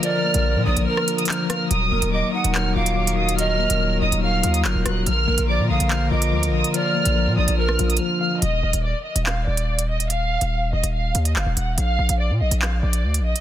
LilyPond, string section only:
\new Staff \with { instrumentName = "String section" } { \time 4/4 \key ees \minor \tempo 4 = 143 << { bes'1~ | bes'1~ | bes'1 | <f' bes'>1~ |
<f' bes'>1 | r1 | r1 | r1 | } \\ { <d bes>1 | <ees ges>1~ | <ees ges>1 | <d bes>1~ |
<d bes>1 | r1 | r1 | r1 | } >> }